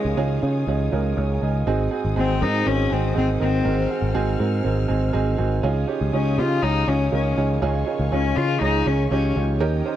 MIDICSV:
0, 0, Header, 1, 5, 480
1, 0, Start_track
1, 0, Tempo, 495909
1, 1616, Time_signature, 4, 2, 24, 8
1, 9643, End_track
2, 0, Start_track
2, 0, Title_t, "String section"
2, 0, Program_c, 0, 48
2, 0, Note_on_c, 0, 73, 62
2, 0, Note_on_c, 0, 77, 63
2, 0, Note_on_c, 0, 80, 57
2, 0, Note_on_c, 0, 87, 71
2, 1570, Note_off_c, 0, 73, 0
2, 1570, Note_off_c, 0, 87, 0
2, 1573, Note_off_c, 0, 77, 0
2, 1606, Note_on_c, 0, 87, 82
2, 1610, Note_on_c, 0, 72, 73
2, 1610, Note_on_c, 0, 78, 62
2, 3512, Note_off_c, 0, 87, 0
2, 3531, Note_on_c, 0, 89, 79
2, 5410, Note_off_c, 0, 80, 0
2, 5414, Note_off_c, 0, 72, 0
2, 5415, Note_off_c, 0, 78, 0
2, 5434, Note_off_c, 0, 89, 0
2, 5454, Note_on_c, 0, 77, 58
2, 5454, Note_on_c, 0, 80, 61
2, 5455, Note_on_c, 0, 73, 68
2, 5455, Note_on_c, 0, 87, 74
2, 7356, Note_off_c, 0, 87, 0
2, 7370, Note_on_c, 0, 85, 80
2, 9256, Note_off_c, 0, 77, 0
2, 9256, Note_off_c, 0, 80, 0
2, 9274, Note_off_c, 0, 85, 0
2, 9289, Note_on_c, 0, 87, 76
2, 9293, Note_on_c, 0, 79, 69
2, 9298, Note_on_c, 0, 82, 69
2, 9643, Note_off_c, 0, 73, 0
2, 9643, Note_off_c, 0, 79, 0
2, 9643, Note_off_c, 0, 82, 0
2, 9643, Note_off_c, 0, 87, 0
2, 9643, End_track
3, 0, Start_track
3, 0, Title_t, "Upright piano"
3, 0, Program_c, 1, 0
3, 0, Control_c, 1, 64, 127
3, 0, Note_on_c, 1, 49, 56
3, 0, Note_on_c, 1, 61, 61
3, 0, Note_on_c, 1, 63, 56
3, 0, Note_on_c, 1, 65, 55
3, 0, Note_on_c, 1, 67, 72
3, 0, Note_on_c, 1, 68, 74
3, 0, Note_on_c, 1, 70, 78
3, 147, Note_off_c, 1, 61, 0
3, 147, Note_off_c, 1, 68, 0
3, 148, Note_off_c, 1, 63, 0
3, 148, Note_off_c, 1, 65, 0
3, 168, Note_on_c, 1, 61, 96
3, 168, Note_on_c, 1, 68, 102
3, 172, Note_on_c, 1, 63, 93
3, 172, Note_on_c, 1, 65, 87
3, 380, Note_off_c, 1, 49, 0
3, 383, Note_off_c, 1, 61, 0
3, 383, Note_off_c, 1, 68, 0
3, 385, Note_off_c, 1, 63, 0
3, 385, Note_off_c, 1, 65, 0
3, 408, Note_on_c, 1, 61, 82
3, 411, Note_on_c, 1, 63, 73
3, 411, Note_on_c, 1, 65, 69
3, 412, Note_on_c, 1, 68, 84
3, 623, Note_off_c, 1, 61, 0
3, 625, Note_off_c, 1, 63, 0
3, 625, Note_off_c, 1, 65, 0
3, 625, Note_off_c, 1, 68, 0
3, 657, Note_on_c, 1, 65, 64
3, 660, Note_on_c, 1, 63, 70
3, 661, Note_on_c, 1, 61, 77
3, 661, Note_on_c, 1, 68, 78
3, 868, Note_off_c, 1, 65, 0
3, 869, Note_off_c, 1, 61, 0
3, 869, Note_off_c, 1, 63, 0
3, 870, Note_off_c, 1, 68, 0
3, 891, Note_on_c, 1, 61, 75
3, 892, Note_on_c, 1, 65, 73
3, 894, Note_off_c, 1, 70, 0
3, 894, Note_on_c, 1, 63, 72
3, 894, Note_on_c, 1, 70, 84
3, 1105, Note_off_c, 1, 61, 0
3, 1105, Note_off_c, 1, 65, 0
3, 1106, Note_off_c, 1, 63, 0
3, 1106, Note_off_c, 1, 70, 0
3, 1129, Note_on_c, 1, 73, 61
3, 1137, Note_on_c, 1, 68, 50
3, 1357, Note_off_c, 1, 68, 0
3, 1361, Note_off_c, 1, 73, 0
3, 1371, Note_on_c, 1, 68, 68
3, 1379, Note_on_c, 1, 63, 57
3, 1602, Note_off_c, 1, 63, 0
3, 1602, Note_off_c, 1, 68, 0
3, 1613, Note_on_c, 1, 44, 65
3, 1614, Note_on_c, 1, 60, 94
3, 1616, Note_on_c, 1, 63, 93
3, 1617, Note_on_c, 1, 66, 92
3, 1617, Note_on_c, 1, 68, 100
3, 1629, Control_c, 1, 64, 0
3, 1637, Note_off_c, 1, 67, 0
3, 1824, Control_c, 1, 64, 127
3, 1826, Note_off_c, 1, 60, 0
3, 1827, Note_off_c, 1, 63, 0
3, 1827, Note_off_c, 1, 66, 0
3, 1828, Note_off_c, 1, 68, 0
3, 1847, Note_on_c, 1, 68, 84
3, 1848, Note_on_c, 1, 63, 69
3, 1849, Note_on_c, 1, 66, 69
3, 1850, Note_on_c, 1, 60, 72
3, 2063, Note_off_c, 1, 63, 0
3, 2063, Note_off_c, 1, 68, 0
3, 2064, Note_off_c, 1, 60, 0
3, 2064, Note_off_c, 1, 66, 0
3, 2091, Note_on_c, 1, 66, 74
3, 2092, Note_on_c, 1, 60, 85
3, 2092, Note_on_c, 1, 63, 69
3, 2092, Note_on_c, 1, 68, 88
3, 2296, Note_off_c, 1, 44, 0
3, 2305, Note_off_c, 1, 60, 0
3, 2305, Note_off_c, 1, 63, 0
3, 2305, Note_off_c, 1, 66, 0
3, 2305, Note_off_c, 1, 68, 0
3, 2329, Note_on_c, 1, 60, 67
3, 2331, Note_on_c, 1, 66, 61
3, 2331, Note_on_c, 1, 70, 73
3, 2332, Note_on_c, 1, 63, 60
3, 2543, Note_off_c, 1, 60, 0
3, 2544, Note_off_c, 1, 66, 0
3, 2545, Note_off_c, 1, 63, 0
3, 2545, Note_off_c, 1, 70, 0
3, 2570, Note_on_c, 1, 60, 63
3, 2570, Note_on_c, 1, 63, 52
3, 2570, Note_on_c, 1, 70, 63
3, 2572, Note_on_c, 1, 66, 57
3, 2784, Note_off_c, 1, 60, 0
3, 2784, Note_off_c, 1, 63, 0
3, 2784, Note_off_c, 1, 70, 0
3, 2785, Note_off_c, 1, 66, 0
3, 2809, Note_on_c, 1, 68, 72
3, 2810, Note_on_c, 1, 66, 67
3, 2811, Note_on_c, 1, 60, 59
3, 2812, Note_on_c, 1, 63, 58
3, 3023, Note_off_c, 1, 68, 0
3, 3024, Note_off_c, 1, 66, 0
3, 3025, Note_off_c, 1, 60, 0
3, 3025, Note_off_c, 1, 63, 0
3, 3046, Note_on_c, 1, 68, 80
3, 3047, Note_on_c, 1, 63, 70
3, 3047, Note_on_c, 1, 66, 66
3, 3048, Note_on_c, 1, 60, 82
3, 3262, Note_off_c, 1, 63, 0
3, 3262, Note_off_c, 1, 68, 0
3, 3263, Note_off_c, 1, 60, 0
3, 3263, Note_off_c, 1, 66, 0
3, 3289, Note_on_c, 1, 60, 72
3, 3291, Note_on_c, 1, 70, 75
3, 3292, Note_on_c, 1, 63, 61
3, 3292, Note_on_c, 1, 66, 60
3, 3504, Note_off_c, 1, 60, 0
3, 3505, Note_off_c, 1, 63, 0
3, 3505, Note_off_c, 1, 66, 0
3, 3505, Note_off_c, 1, 70, 0
3, 3528, Note_on_c, 1, 44, 55
3, 3531, Note_on_c, 1, 63, 72
3, 3531, Note_on_c, 1, 70, 84
3, 3532, Note_on_c, 1, 60, 82
3, 3532, Note_on_c, 1, 66, 78
3, 3744, Note_off_c, 1, 63, 0
3, 3745, Note_off_c, 1, 60, 0
3, 3745, Note_off_c, 1, 66, 0
3, 3745, Note_off_c, 1, 70, 0
3, 3776, Note_on_c, 1, 63, 58
3, 3776, Note_on_c, 1, 66, 59
3, 3777, Note_on_c, 1, 60, 64
3, 3778, Note_on_c, 1, 68, 66
3, 3987, Note_off_c, 1, 63, 0
3, 3987, Note_off_c, 1, 66, 0
3, 3988, Note_off_c, 1, 60, 0
3, 3988, Note_off_c, 1, 68, 0
3, 4010, Note_on_c, 1, 60, 98
3, 4011, Note_on_c, 1, 63, 82
3, 4011, Note_on_c, 1, 66, 92
3, 4013, Note_on_c, 1, 68, 108
3, 4213, Note_off_c, 1, 44, 0
3, 4224, Note_off_c, 1, 60, 0
3, 4225, Note_off_c, 1, 63, 0
3, 4225, Note_off_c, 1, 66, 0
3, 4226, Note_off_c, 1, 68, 0
3, 4252, Note_on_c, 1, 63, 64
3, 4254, Note_on_c, 1, 70, 80
3, 4255, Note_on_c, 1, 60, 77
3, 4257, Note_on_c, 1, 66, 67
3, 4465, Note_off_c, 1, 63, 0
3, 4466, Note_off_c, 1, 70, 0
3, 4467, Note_off_c, 1, 60, 0
3, 4468, Note_off_c, 1, 66, 0
3, 4489, Note_on_c, 1, 63, 67
3, 4491, Note_on_c, 1, 66, 66
3, 4492, Note_on_c, 1, 60, 75
3, 4492, Note_on_c, 1, 70, 75
3, 4704, Note_off_c, 1, 63, 0
3, 4705, Note_off_c, 1, 60, 0
3, 4705, Note_off_c, 1, 66, 0
3, 4705, Note_off_c, 1, 70, 0
3, 4724, Note_on_c, 1, 63, 73
3, 4725, Note_on_c, 1, 60, 73
3, 4725, Note_on_c, 1, 68, 88
3, 4728, Note_on_c, 1, 66, 67
3, 4941, Note_off_c, 1, 63, 0
3, 4942, Note_off_c, 1, 60, 0
3, 4942, Note_off_c, 1, 68, 0
3, 4943, Note_off_c, 1, 66, 0
3, 4963, Note_on_c, 1, 63, 88
3, 4966, Note_on_c, 1, 66, 76
3, 4967, Note_on_c, 1, 60, 80
3, 4967, Note_on_c, 1, 68, 101
3, 5181, Note_off_c, 1, 63, 0
3, 5182, Note_off_c, 1, 66, 0
3, 5183, Note_off_c, 1, 60, 0
3, 5183, Note_off_c, 1, 68, 0
3, 5204, Note_on_c, 1, 66, 76
3, 5206, Note_on_c, 1, 60, 72
3, 5208, Note_on_c, 1, 63, 67
3, 5209, Note_on_c, 1, 68, 85
3, 5421, Note_off_c, 1, 66, 0
3, 5422, Note_off_c, 1, 60, 0
3, 5423, Note_off_c, 1, 63, 0
3, 5424, Note_off_c, 1, 68, 0
3, 5451, Note_on_c, 1, 65, 92
3, 5452, Note_on_c, 1, 49, 68
3, 5452, Note_on_c, 1, 61, 99
3, 5452, Note_on_c, 1, 63, 88
3, 5453, Note_on_c, 1, 68, 98
3, 5467, Control_c, 1, 64, 0
3, 5649, Control_c, 1, 64, 127
3, 5665, Note_off_c, 1, 61, 0
3, 5665, Note_off_c, 1, 63, 0
3, 5665, Note_off_c, 1, 65, 0
3, 5665, Note_off_c, 1, 68, 0
3, 5689, Note_on_c, 1, 61, 74
3, 5690, Note_on_c, 1, 65, 69
3, 5690, Note_on_c, 1, 67, 84
3, 5692, Note_on_c, 1, 63, 63
3, 5904, Note_off_c, 1, 61, 0
3, 5904, Note_off_c, 1, 65, 0
3, 5904, Note_off_c, 1, 67, 0
3, 5905, Note_off_c, 1, 63, 0
3, 5935, Note_on_c, 1, 61, 82
3, 5938, Note_on_c, 1, 63, 80
3, 5939, Note_on_c, 1, 65, 68
3, 5939, Note_on_c, 1, 68, 81
3, 6135, Note_off_c, 1, 49, 0
3, 6146, Note_off_c, 1, 61, 0
3, 6148, Note_off_c, 1, 63, 0
3, 6149, Note_off_c, 1, 65, 0
3, 6149, Note_off_c, 1, 68, 0
3, 6173, Note_on_c, 1, 65, 60
3, 6174, Note_on_c, 1, 61, 67
3, 6175, Note_on_c, 1, 63, 64
3, 6176, Note_on_c, 1, 67, 79
3, 6386, Note_off_c, 1, 61, 0
3, 6386, Note_off_c, 1, 65, 0
3, 6387, Note_off_c, 1, 63, 0
3, 6387, Note_off_c, 1, 67, 0
3, 6413, Note_on_c, 1, 61, 61
3, 6414, Note_on_c, 1, 63, 59
3, 6415, Note_on_c, 1, 67, 70
3, 6417, Note_on_c, 1, 65, 59
3, 6626, Note_off_c, 1, 61, 0
3, 6626, Note_off_c, 1, 63, 0
3, 6626, Note_off_c, 1, 67, 0
3, 6628, Note_off_c, 1, 65, 0
3, 6653, Note_on_c, 1, 61, 64
3, 6656, Note_on_c, 1, 65, 58
3, 6656, Note_on_c, 1, 68, 71
3, 6657, Note_on_c, 1, 63, 58
3, 6865, Note_off_c, 1, 61, 0
3, 6867, Note_off_c, 1, 63, 0
3, 6867, Note_off_c, 1, 65, 0
3, 6867, Note_off_c, 1, 68, 0
3, 6892, Note_on_c, 1, 61, 69
3, 6892, Note_on_c, 1, 70, 83
3, 6893, Note_on_c, 1, 65, 75
3, 6895, Note_on_c, 1, 63, 67
3, 7105, Note_off_c, 1, 61, 0
3, 7105, Note_off_c, 1, 65, 0
3, 7105, Note_off_c, 1, 70, 0
3, 7106, Note_off_c, 1, 63, 0
3, 7138, Note_on_c, 1, 63, 62
3, 7139, Note_on_c, 1, 61, 69
3, 7139, Note_on_c, 1, 65, 57
3, 7139, Note_on_c, 1, 68, 78
3, 7348, Note_off_c, 1, 61, 0
3, 7348, Note_off_c, 1, 63, 0
3, 7348, Note_off_c, 1, 65, 0
3, 7348, Note_off_c, 1, 68, 0
3, 7374, Note_on_c, 1, 61, 97
3, 7376, Note_on_c, 1, 63, 93
3, 7376, Note_on_c, 1, 65, 91
3, 7377, Note_on_c, 1, 49, 74
3, 7377, Note_on_c, 1, 68, 112
3, 7586, Note_off_c, 1, 61, 0
3, 7587, Note_off_c, 1, 63, 0
3, 7587, Note_off_c, 1, 65, 0
3, 7588, Note_off_c, 1, 68, 0
3, 7611, Note_on_c, 1, 63, 63
3, 7614, Note_on_c, 1, 68, 76
3, 7615, Note_on_c, 1, 61, 73
3, 7615, Note_on_c, 1, 65, 70
3, 7824, Note_off_c, 1, 63, 0
3, 7826, Note_off_c, 1, 68, 0
3, 7827, Note_off_c, 1, 61, 0
3, 7827, Note_off_c, 1, 65, 0
3, 7859, Note_on_c, 1, 68, 94
3, 7860, Note_on_c, 1, 65, 76
3, 7861, Note_on_c, 1, 61, 78
3, 7862, Note_on_c, 1, 63, 79
3, 8058, Note_off_c, 1, 49, 0
3, 8069, Note_off_c, 1, 65, 0
3, 8069, Note_off_c, 1, 68, 0
3, 8070, Note_off_c, 1, 61, 0
3, 8070, Note_off_c, 1, 63, 0
3, 8100, Note_on_c, 1, 61, 68
3, 8100, Note_on_c, 1, 63, 61
3, 8102, Note_on_c, 1, 65, 63
3, 8102, Note_on_c, 1, 68, 69
3, 8309, Note_off_c, 1, 61, 0
3, 8309, Note_off_c, 1, 63, 0
3, 8310, Note_off_c, 1, 65, 0
3, 8310, Note_off_c, 1, 68, 0
3, 8338, Note_on_c, 1, 63, 59
3, 8339, Note_on_c, 1, 68, 71
3, 8340, Note_on_c, 1, 65, 56
3, 8341, Note_on_c, 1, 61, 58
3, 8548, Note_off_c, 1, 63, 0
3, 8549, Note_off_c, 1, 61, 0
3, 8549, Note_off_c, 1, 65, 0
3, 8549, Note_off_c, 1, 68, 0
3, 8580, Note_on_c, 1, 65, 63
3, 8581, Note_on_c, 1, 61, 66
3, 8582, Note_on_c, 1, 68, 80
3, 8583, Note_on_c, 1, 63, 63
3, 8789, Note_off_c, 1, 61, 0
3, 8789, Note_off_c, 1, 65, 0
3, 8790, Note_off_c, 1, 63, 0
3, 8790, Note_off_c, 1, 68, 0
3, 8821, Note_on_c, 1, 61, 83
3, 8821, Note_on_c, 1, 63, 71
3, 8821, Note_on_c, 1, 65, 66
3, 8823, Note_on_c, 1, 67, 91
3, 9029, Note_off_c, 1, 61, 0
3, 9029, Note_off_c, 1, 63, 0
3, 9030, Note_off_c, 1, 65, 0
3, 9031, Note_off_c, 1, 67, 0
3, 9063, Note_on_c, 1, 65, 68
3, 9064, Note_on_c, 1, 61, 67
3, 9064, Note_on_c, 1, 63, 63
3, 9064, Note_on_c, 1, 67, 76
3, 9270, Note_off_c, 1, 65, 0
3, 9271, Note_off_c, 1, 61, 0
3, 9271, Note_off_c, 1, 63, 0
3, 9271, Note_off_c, 1, 67, 0
3, 9294, Note_on_c, 1, 51, 71
3, 9296, Note_on_c, 1, 63, 98
3, 9296, Note_on_c, 1, 70, 114
3, 9297, Note_on_c, 1, 67, 102
3, 9298, Note_on_c, 1, 61, 91
3, 9307, Control_c, 1, 64, 0
3, 9482, Control_c, 1, 64, 127
3, 9507, Note_off_c, 1, 63, 0
3, 9507, Note_off_c, 1, 67, 0
3, 9507, Note_off_c, 1, 70, 0
3, 9508, Note_off_c, 1, 61, 0
3, 9538, Note_on_c, 1, 67, 71
3, 9539, Note_on_c, 1, 61, 78
3, 9540, Note_on_c, 1, 72, 84
3, 9542, Note_on_c, 1, 63, 73
3, 9643, Note_off_c, 1, 51, 0
3, 9643, Note_off_c, 1, 61, 0
3, 9643, Note_off_c, 1, 63, 0
3, 9643, Note_off_c, 1, 67, 0
3, 9643, Note_off_c, 1, 72, 0
3, 9643, End_track
4, 0, Start_track
4, 0, Title_t, "Cello"
4, 0, Program_c, 2, 42
4, 0, Note_on_c, 2, 56, 73
4, 131, Note_off_c, 2, 56, 0
4, 2099, Note_on_c, 2, 60, 84
4, 2344, Note_on_c, 2, 63, 88
4, 2358, Note_off_c, 2, 60, 0
4, 2583, Note_on_c, 2, 61, 94
4, 2598, Note_off_c, 2, 63, 0
4, 2828, Note_on_c, 2, 60, 79
4, 2843, Note_off_c, 2, 61, 0
4, 3062, Note_off_c, 2, 60, 0
4, 3069, Note_on_c, 2, 60, 83
4, 3174, Note_off_c, 2, 60, 0
4, 3309, Note_on_c, 2, 60, 81
4, 3984, Note_off_c, 2, 60, 0
4, 5943, Note_on_c, 2, 61, 73
4, 6183, Note_on_c, 2, 65, 78
4, 6197, Note_off_c, 2, 61, 0
4, 6413, Note_on_c, 2, 63, 88
4, 6427, Note_off_c, 2, 65, 0
4, 6663, Note_on_c, 2, 61, 83
4, 6677, Note_off_c, 2, 63, 0
4, 6899, Note_off_c, 2, 61, 0
4, 6917, Note_on_c, 2, 61, 73
4, 7130, Note_off_c, 2, 61, 0
4, 7871, Note_on_c, 2, 61, 78
4, 8096, Note_on_c, 2, 65, 88
4, 8110, Note_off_c, 2, 61, 0
4, 8336, Note_off_c, 2, 65, 0
4, 8345, Note_on_c, 2, 63, 88
4, 8585, Note_on_c, 2, 61, 83
4, 8600, Note_off_c, 2, 63, 0
4, 8814, Note_off_c, 2, 61, 0
4, 8820, Note_on_c, 2, 61, 74
4, 9041, Note_off_c, 2, 61, 0
4, 9643, End_track
5, 0, Start_track
5, 0, Title_t, "Picked electric bass"
5, 0, Program_c, 3, 34
5, 49, Note_on_c, 3, 37, 85
5, 150, Note_off_c, 3, 37, 0
5, 167, Note_on_c, 3, 37, 93
5, 368, Note_off_c, 3, 37, 0
5, 415, Note_on_c, 3, 49, 92
5, 612, Note_off_c, 3, 49, 0
5, 651, Note_on_c, 3, 37, 91
5, 850, Note_off_c, 3, 37, 0
5, 897, Note_on_c, 3, 37, 99
5, 1094, Note_off_c, 3, 37, 0
5, 1136, Note_on_c, 3, 37, 102
5, 1333, Note_off_c, 3, 37, 0
5, 1375, Note_on_c, 3, 37, 81
5, 1572, Note_off_c, 3, 37, 0
5, 1616, Note_on_c, 3, 32, 90
5, 1813, Note_off_c, 3, 32, 0
5, 1981, Note_on_c, 3, 32, 83
5, 2078, Note_off_c, 3, 32, 0
5, 2094, Note_on_c, 3, 32, 93
5, 2342, Note_on_c, 3, 44, 91
5, 2357, Note_off_c, 3, 32, 0
5, 2537, Note_off_c, 3, 44, 0
5, 2580, Note_on_c, 3, 32, 91
5, 2775, Note_off_c, 3, 32, 0
5, 2824, Note_on_c, 3, 32, 83
5, 3018, Note_off_c, 3, 32, 0
5, 3064, Note_on_c, 3, 32, 87
5, 3258, Note_off_c, 3, 32, 0
5, 3299, Note_on_c, 3, 32, 78
5, 3495, Note_off_c, 3, 32, 0
5, 3539, Note_on_c, 3, 32, 102
5, 3735, Note_off_c, 3, 32, 0
5, 3892, Note_on_c, 3, 32, 92
5, 3992, Note_off_c, 3, 32, 0
5, 4017, Note_on_c, 3, 32, 84
5, 4214, Note_off_c, 3, 32, 0
5, 4260, Note_on_c, 3, 44, 75
5, 4455, Note_off_c, 3, 44, 0
5, 4500, Note_on_c, 3, 32, 87
5, 4695, Note_off_c, 3, 32, 0
5, 4742, Note_on_c, 3, 32, 86
5, 4936, Note_off_c, 3, 32, 0
5, 4979, Note_on_c, 3, 32, 84
5, 5175, Note_off_c, 3, 32, 0
5, 5218, Note_on_c, 3, 32, 83
5, 5414, Note_off_c, 3, 32, 0
5, 5454, Note_on_c, 3, 37, 94
5, 5652, Note_off_c, 3, 37, 0
5, 5819, Note_on_c, 3, 37, 79
5, 5916, Note_off_c, 3, 37, 0
5, 5938, Note_on_c, 3, 37, 83
5, 6177, Note_on_c, 3, 49, 86
5, 6192, Note_off_c, 3, 37, 0
5, 6373, Note_off_c, 3, 49, 0
5, 6415, Note_on_c, 3, 37, 88
5, 6612, Note_off_c, 3, 37, 0
5, 6656, Note_on_c, 3, 37, 90
5, 6853, Note_off_c, 3, 37, 0
5, 6897, Note_on_c, 3, 37, 101
5, 7093, Note_off_c, 3, 37, 0
5, 7137, Note_on_c, 3, 37, 79
5, 7333, Note_off_c, 3, 37, 0
5, 7376, Note_on_c, 3, 37, 103
5, 7573, Note_off_c, 3, 37, 0
5, 7738, Note_on_c, 3, 37, 85
5, 7836, Note_off_c, 3, 37, 0
5, 7860, Note_on_c, 3, 37, 101
5, 8055, Note_off_c, 3, 37, 0
5, 8099, Note_on_c, 3, 49, 102
5, 8295, Note_off_c, 3, 49, 0
5, 8336, Note_on_c, 3, 37, 93
5, 8533, Note_off_c, 3, 37, 0
5, 8578, Note_on_c, 3, 37, 97
5, 8774, Note_off_c, 3, 37, 0
5, 8819, Note_on_c, 3, 37, 92
5, 9015, Note_off_c, 3, 37, 0
5, 9060, Note_on_c, 3, 37, 88
5, 9300, Note_off_c, 3, 37, 0
5, 9300, Note_on_c, 3, 39, 100
5, 9495, Note_off_c, 3, 39, 0
5, 9643, End_track
0, 0, End_of_file